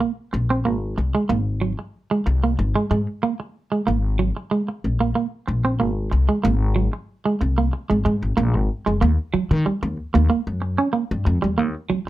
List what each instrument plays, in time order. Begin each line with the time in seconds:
0.00 clean electric guitar A#3
0.33 upright bass A#1, muted clean electric guitar stroke
0.50 clean electric guitar C4
0.65 upright bass G#1, clean electric guitar A#3
0.98 upright bass C2, muted clean electric guitar stroke
1.15 clean electric guitar G#3
1.29 upright bass G#1, clean electric guitar A#3
1.61 clean electric guitar F#3
1.79 muted clean electric guitar stroke
2.11 clean electric guitar G#3
2.26 upright bass C2, muted clean electric guitar stroke
2.43 clean electric guitar A#3
2.59 upright bass G#1, muted clean electric guitar stroke
2.75 clean electric guitar G#3
2.91 upright bass G#2, clean electric guitar G#3
3.23 clean electric guitar A#3
3.40 muted clean electric guitar stroke
3.72 clean electric guitar G#3
3.87 upright bass G#1, clean electric guitar A#3
4.19 clean electric guitar F#3
4.37 muted clean electric guitar stroke
4.51 clean electric guitar G#3
4.68 muted clean electric guitar stroke
4.84 upright bass A#1
5.00 clean electric guitar A#3
5.15 clean electric guitar A#3
5.48 upright bass A#1, muted clean electric guitar stroke
5.65 clean electric guitar C4
5.80 upright bass G#1, clean electric guitar A#3
6.12 upright bass C2, muted clean electric guitar stroke
6.29 clean electric guitar G#3
6.44 upright bass G#1, clean electric guitar A#3
6.76 clean electric guitar F#3
6.93 muted clean electric guitar stroke
7.26 clean electric guitar G#3
7.41 upright bass C2, muted clean electric guitar stroke
7.58 clean electric guitar A#3
7.73 muted clean electric guitar stroke
7.90 upright bass G#1, clean electric guitar G#3
8.05 upright bass G#2, clean electric guitar G#3
8.23 upright bass G#1
8.37 upright bass A#1, clean electric guitar A#3
8.54 upright bass G#1, muted clean electric guitar stroke
8.86 upright bass F#1, clean electric guitar G#3
9.01 upright bass D#2, clean electric guitar A#3
9.34 clean electric guitar F#3, muted upright bass stroke
9.51 upright bass D#3, muted clean electric guitar stroke
9.66 clean electric guitar G3, muted upright bass stroke
9.83 upright bass D#2, muted clean electric guitar stroke
10.14 upright bass D#2, clean electric guitar A#3
10.30 clean electric guitar A#3, muted upright bass stroke
10.47 upright bass F#2
10.62 muted clean electric guitar stroke
10.78 clean electric guitar C#4
10.93 clean electric guitar A#3
11.11 upright bass G2
11.25 upright bass F2, muted clean electric guitar stroke
11.42 upright bass E2, clean electric guitar G3
11.58 upright bass D#2, clean electric guitar A#3
11.90 clean electric guitar F#3, muted upright bass stroke